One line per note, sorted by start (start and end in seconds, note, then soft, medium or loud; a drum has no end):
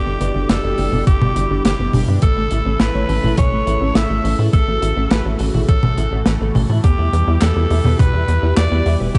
0.00 2.19 B2 medium
0.00 2.19 D3 medium
0.00 2.19 G3 medium
0.00 2.20 E4 medium
0.00 0.51 G4 loud
0.00 2.19 G4 loud
0.06 0.17 G1 medium
0.06 0.13 G3 medium
0.06 0.20 B3 medium
0.20 0.31 G1 medium
0.20 0.25 D4 loud
0.20 0.33 B4 medium
0.20 closed hi-hat medium
0.35 0.46 G1 medium
0.35 0.39 G3 medium
0.35 0.47 D4 medium
0.49 0.60 G1 loud
0.49 0.62 G4 medium
0.49 1.06 A4 loud
0.49 snare loud
0.49 closed hi-hat loud
0.64 0.74 G1 medium
0.64 0.71 G3 medium
0.64 0.71 D5 loud
0.78 0.89 G1 medium
0.78 0.86 D4 medium
0.78 0.83 G4 loud
0.78 open hi-hat medium
0.92 1.03 G1 medium
0.92 1.05 B3 medium
0.92 1.00 D4 loud
0.92 mid tom medium
1.07 1.18 G1 loud
1.07 1.61 G4 loud
1.07 1.19 D5 medium
1.07 kick loud
1.07 closed hi-hat loud
1.22 1.32 G1 medium
1.22 1.29 G3 medium
1.22 1.35 B3 medium
1.22 mid tom medium
1.36 1.46 G1 medium
1.36 1.40 D4 loud
1.36 1.43 G4 medium
1.36 closed hi-hat medium
1.50 1.61 G1 medium
1.50 1.55 G3 medium
1.50 1.63 D4 medium
1.65 1.75 G1 loud
1.65 2.05 G4 loud
1.65 1.77 G4 medium
1.65 snare loud
1.65 closed hi-hat loud
1.79 1.90 G1 medium
1.79 1.86 G3 medium
1.79 1.91 B3 loud
1.93 2.04 G1 medium
1.93 2.01 D4 medium
1.93 1.98 G4 loud
1.93 open hi-hat medium
1.93 mid tom medium
2.08 2.19 G2 medium
2.08 2.15 D4 loud
2.08 2.20 B4 medium
2.22 2.33 A1 loud
2.22 6.80 C#3 medium
2.22 9.19 E3 medium
2.22 2.35 A3 medium
2.22 6.80 A3 medium
2.22 4.51 E4 medium
2.22 2.82 A4 loud
2.22 6.80 A4 loud
2.22 kick loud
2.22 closed hi-hat loud
2.37 2.47 A1 medium
2.37 2.44 A3 medium
2.37 2.51 A3 medium
2.51 2.62 A1 medium
2.51 2.56 E4 loud
2.51 2.64 A4 medium
2.51 closed hi-hat medium
2.66 2.76 A1 medium
2.66 2.70 A3 medium
2.66 2.78 C#4 medium
2.80 2.91 A1 loud
2.80 2.92 E4 medium
2.80 3.37 B4 loud
2.80 snare loud
2.80 closed hi-hat medium
2.94 3.05 A1 medium
2.94 3.02 A3 medium
2.94 3.02 C#5 loud
3.09 3.19 A1 medium
3.09 3.16 C#4 medium
3.09 3.13 A4 loud
3.09 open hi-hat medium
3.23 3.34 A1 medium
3.23 3.36 A3 medium
3.23 3.31 E4 loud
3.23 mid tom medium
3.37 3.48 A1 loud
3.37 3.50 C#5 medium
3.37 3.97 C#5 loud
3.37 kick loud
3.37 closed hi-hat loud
3.37 mid tom medium
3.52 3.63 A1 medium
3.52 3.59 A3 medium
3.52 3.66 A3 medium
3.67 3.77 A1 medium
3.67 3.71 E4 loud
3.67 3.74 E4 medium
3.67 closed hi-hat medium
3.81 3.92 A1 medium
3.81 3.85 A3 medium
3.81 3.93 C#4 medium
3.95 4.06 A1 loud
3.95 4.08 E4 medium
3.95 4.39 E5 loud
3.95 snare loud
3.95 closed hi-hat medium
4.10 4.20 A1 medium
4.10 4.17 A3 medium
4.10 4.22 A3 loud
4.24 4.35 A1 loud
4.24 4.32 C#4 medium
4.24 4.29 A4 loud
4.24 open hi-hat medium
4.39 4.49 A2 medium
4.39 4.46 E4 loud
4.39 4.51 A4 medium
4.53 4.64 A1 loud
4.53 4.66 A3 medium
4.53 6.82 F#4 medium
4.53 5.12 A4 loud
4.53 kick loud
4.53 closed hi-hat loud
4.68 4.78 A1 medium
4.68 4.75 A3 medium
4.68 4.81 A3 medium
4.82 4.93 A1 loud
4.82 4.86 E4 loud
4.82 4.94 A4 medium
4.82 closed hi-hat medium
4.96 5.07 A1 medium
4.96 5.01 A3 medium
4.96 5.09 C#4 medium
5.11 5.21 A1 loud
5.11 5.23 E4 medium
5.11 5.25 B4 loud
5.11 snare loud
5.11 closed hi-hat loud
5.25 5.36 A1 medium
5.25 5.33 A3 medium
5.25 5.33 C#5 loud
5.39 5.50 A1 medium
5.39 5.47 C#4 medium
5.39 5.44 A4 loud
5.39 open hi-hat medium
5.54 5.65 A1 medium
5.54 5.67 A3 medium
5.54 5.61 E4 loud
5.54 mid tom medium
5.69 5.79 A1 loud
5.69 6.22 A4 loud
5.69 5.81 C#5 medium
5.69 kick loud
5.69 closed hi-hat medium
5.83 5.94 A1 medium
5.83 5.90 A3 medium
5.83 5.96 A3 medium
5.83 mid tom loud
5.97 6.08 A1 medium
5.97 6.05 A3 medium
5.97 6.02 E4 loud
5.97 closed hi-hat medium
6.12 6.22 A1 medium
6.12 6.16 A3 medium
6.12 6.26 C#4 medium
6.26 6.37 A1 loud
6.26 6.34 A5 loud
6.26 snare loud
6.26 closed hi-hat loud
6.41 6.51 A1 medium
6.41 6.48 A3 medium
6.41 6.53 A4 medium
6.55 6.66 A1 loud
6.55 6.68 A3 medium
6.55 6.60 A4 loud
6.55 open hi-hat medium
6.55 mid tom medium
6.70 6.80 A2 medium
6.70 6.77 E4 loud
6.70 6.83 A5 loud
6.84 6.95 E2 loud
6.84 9.19 B2 medium
6.84 9.19 G3 medium
6.84 6.96 B3 medium
6.84 9.19 E4 medium
6.84 7.43 G4 loud
6.84 9.13 G4 loud
6.84 kick loud
6.84 closed hi-hat medium
6.98 7.09 E2 medium
6.98 7.12 B3 medium
6.98 7.06 E4 medium
7.13 7.23 E2 medium
7.13 7.25 B4 medium
7.13 closed hi-hat medium
7.27 7.38 E2 medium
7.27 7.32 E4 medium
7.27 7.40 E4 medium
7.41 7.52 E2 loud
7.41 7.54 G4 medium
7.41 7.99 A4 loud
7.41 7.46 B4 loud
7.41 snare loud
7.41 clap medium
7.41 closed hi-hat medium
7.56 7.67 E2 medium
7.56 7.63 E4 medium
7.56 7.64 E5 loud
7.70 7.81 E2 medium
7.70 7.78 E4 medium
7.70 7.75 E5 loud
7.70 open hi-hat medium
7.84 7.95 E2 medium
7.84 7.97 B3 medium
7.84 7.92 B4 loud
7.84 mid tom medium
7.99 8.10 E2 loud
7.99 8.53 B4 loud
7.99 8.12 E5 medium
7.99 kick loud
7.99 closed hi-hat medium
7.99 mid tom loud
8.14 8.24 E2 medium
8.14 8.28 B3 medium
8.14 8.21 E4 medium
8.28 8.39 E2 medium
8.28 8.36 G4 medium
8.28 closed hi-hat medium
8.43 8.53 E2 medium
8.43 8.55 E4 medium
8.43 8.47 E4 medium
8.57 8.68 E2 loud
8.57 8.69 G4 medium
8.57 8.61 B4 loud
8.57 8.97 D5 loud
8.57 snare loud
8.57 clap medium
8.57 closed hi-hat loud
8.72 8.82 E2 medium
8.72 8.84 B3 loud
8.72 8.79 E4 medium
8.86 8.96 E2 loud
8.86 8.93 E4 medium
8.86 8.90 E5 loud
8.86 open hi-hat medium
9.00 9.11 E1 medium
9.00 9.08 B4 loud
9.00 9.13 B4 medium
9.15 9.19 E2 loud
9.15 9.19 B3 medium
9.15 9.19 G4 loud
9.15 9.19 F#5 medium
9.15 kick loud
9.15 closed hi-hat medium